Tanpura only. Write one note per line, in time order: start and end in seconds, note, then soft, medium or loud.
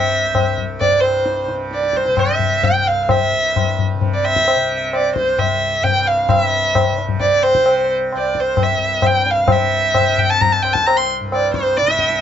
0.00 0.23 C2 medium
0.00 0.85 G2 medium
0.00 1.48 C3 medium
0.23 2.70 C2 medium
0.85 3.32 G2 medium
1.48 2.08 C3 medium
2.08 3.94 C3 medium
2.70 5.18 C2 medium
3.33 5.80 G2 soft
3.94 4.57 C3 medium
4.57 6.92 C3 medium
5.18 8.15 C2 medium
5.81 6.30 G2 medium
6.30 8.76 G2 medium
6.92 7.54 C3 soft
7.54 9.38 C3 medium
8.15 10.58 C2 medium
8.76 11.20 G2 medium
9.38 9.99 C3 medium
9.99 11.82 C3 medium
10.58 12.21 C2 medium
11.21 12.21 G2 medium
11.82 12.21 C3 medium